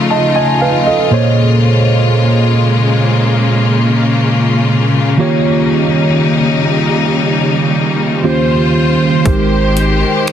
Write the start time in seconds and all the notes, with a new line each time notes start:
Already playing: C#3 A3 D#4 F4
0.11 D#5 A5
0.36 D#5 G#5
0.61 B4 F5
0.87 A4 D#5
1.10 A#2 C#3 G#3 A#3 G#4 C5 C#5
5.17 D#3 G3 A#3 D#4 F4 G4 C#5
8.23 D#2 D#3 A#3 C#4 F4 G4 C5
9.24 G#1 D#3 G#3 D#4 G4 A#4 C5, kick, closed hi-hat
9.77 closed hi-hat
10.28 finger snap, closed hi-hat